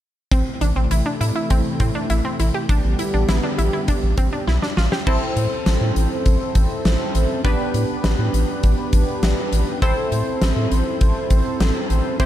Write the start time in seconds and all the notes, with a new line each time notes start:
0.31 A1 C3 E3 A3 C4 E4, kick, closed hi-hat
0.61 A1 D4, closed hi-hat
0.76 A1 C4
0.91 A1 E4, closed hi-hat
1.06 D4
1.21 A2 E4, closed hi-hat
1.36 E4
1.50 A1 C4, kick, closed hi-hat
1.80 A2 C4, kick, closed hi-hat
1.95 D4
2.10 A1 E4, closed hi-hat
2.25 C4
2.39 A1 E4, closed hi-hat
2.54 G4
2.69 A1 D3 G3 B3 D4 G4, kick, closed hi-hat
2.84 A1
2.99 E4, closed hi-hat
3.14 A1 D4
3.29 A1 E4, snare, closed hi-hat
3.43 D4
3.58 A1 E4, closed hi-hat
3.73 E4
3.88 D4, kick, closed hi-hat
4.03 A1
4.17 A1 C4, kick, closed hi-hat
4.33 D4
4.47 B1 E4, snare
4.62 D4, snare
4.77 A1 F4, snare
4.92 G4, snare
5.07 A1 C4 E4 A4 C5, kick, crash
5.36 A2, closed hi-hat
5.66 A1, snare, closed hi-hat
5.81 A2
5.96 A1, closed hi-hat
6.26 A1, kick, closed hi-hat
6.55 A1, kick, closed hi-hat
6.85 A1, snare, closed hi-hat
7.15 A1, closed hi-hat
7.45 A1 B3 D4 G4 B4, kick, closed hi-hat
7.74 A2, closed hi-hat
8.04 A1, snare, closed hi-hat
8.19 A2
8.33 A1, closed hi-hat
8.63 A1, kick, closed hi-hat
8.93 A1, kick, closed hi-hat
9.23 A1, snare, closed hi-hat
9.52 A1, closed hi-hat
9.82 A1 C4 E4 A4 C5, kick, closed hi-hat
10.12 A2, closed hi-hat
10.41 A1, snare, closed hi-hat
10.56 A2
10.71 A1, closed hi-hat
11.01 A1, kick, closed hi-hat
11.30 A1, kick, closed hi-hat
11.60 A1, snare, closed hi-hat
11.90 A1, closed hi-hat
12.20 A1 C4 E4 G4 C5, kick, closed hi-hat